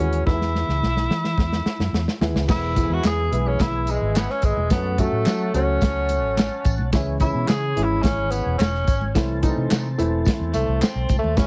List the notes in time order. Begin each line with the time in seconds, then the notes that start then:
Already playing: C#4
0.00 D#2 E3 G#3 C#4 F#4
0.13 closed hi-hat
0.26 E2 E3 G#3 B3 D#4 E4, kick, snare
0.33 E4
0.41 snare
0.55 snare
0.68 C#2, snare
0.82 B1, snare
0.97 snare
1.10 E3, snare
1.24 snare
1.38 E2, kick, snare
1.53 snare
1.65 muted fingered electric bass stroke, snare
1.79 F#2, snare
1.93 E2, snare
2.08 snare
2.21 D#2 E3 G#3 B3 E4, snare
2.34 C#2, snare
2.48 E3 G#3 B3 E4 B4 E5 G#5, kick, snare, crash, tambourine, muted conga
2.76 E3 G#3 B3 E4, kick, closed hi-hat, tambourine, muted conga
2.90 E2 F#4
3.03 E2 G#4, snare, clap, closed hi-hat, tambourine, high conga
3.32 B1 E3 G#3 B3 E4, closed hi-hat
3.48 C#4
3.59 E4, kick, snare, closed hi-hat, tambourine, muted conga, low conga
3.87 G#3, closed hi-hat, tambourine, muted conga
4.01 G#1
4.15 B3, snare, clap, closed hi-hat, tambourine, high conga
4.30 C#4, snare
4.42 G#1 G#3, kick, closed hi-hat, tambourine
4.57 E1, high conga
4.70 F#2 F#3 A3 B3 C#4 F#4 C#5 F#5 A5, kick, snare, closed hi-hat, tambourine
4.98 F#3 A3 C#4 F#4, kick, closed hi-hat, tambourine, muted conga
5.12 A2
5.26 F#3, snare, clap, closed hi-hat, tambourine, high conga
5.54 C#2 F#3 A3 C#4 F#4, closed hi-hat, tambourine
5.81 kick, snare, closed hi-hat, tambourine, muted conga
6.09 closed hi-hat, tambourine, muted conga
6.23 A1
6.37 snare, clap, closed hi-hat, tambourine, high conga
6.65 A1, kick, closed hi-hat, tambourine
6.78 B1, high conga
6.92 C#2 E3 G#3 C#4 E4 C#5 G#5, kick, snare, closed hi-hat, tambourine
7.20 E3 G#3 C#4 E4, kick, closed hi-hat, tambourine, muted conga
7.35 B2
7.48 C#3 G#4, snare, clap, closed hi-hat, tambourine, high conga
7.76 G#1 E3 G#3 C#4 E4, closed hi-hat
7.84 E4
8.02 G#1 C#4, kick, snare, closed hi-hat, tambourine, muted conga, low conga
8.31 B3, closed hi-hat, tambourine, muted conga
8.46 E1
8.58 E1 C#4, snare, clap, closed hi-hat, tambourine, high conga
8.75 snare
8.87 G#1, kick, closed hi-hat, tambourine
9.01 high conga
9.15 C2 E3 A3 C4 E4 C5 A5, kick, snare, closed hi-hat, tambourine
9.42 E3 A3 B3 D#4, kick, closed hi-hat, tambourine, muted conga
9.49 C4
9.57 C3
9.71 C3, snare, clap, closed hi-hat, tambourine, high conga
9.98 E1 E3 A3 C4 E4, closed hi-hat, tambourine
10.25 kick, snare, closed hi-hat, tambourine, muted conga, low conga
10.40 E2
10.54 C2 A3, closed hi-hat, tambourine, muted conga
10.68 C2
10.81 C4, snare, clap, closed hi-hat, tambourine, high conga
10.95 B1
11.09 C2, kick, closed hi-hat, tambourine, high conga
11.19 A3
11.23 D#2, high conga
11.37 E1 E3 G#3 B3 C#4 E4 B4 G#5, kick, snare, closed hi-hat, tambourine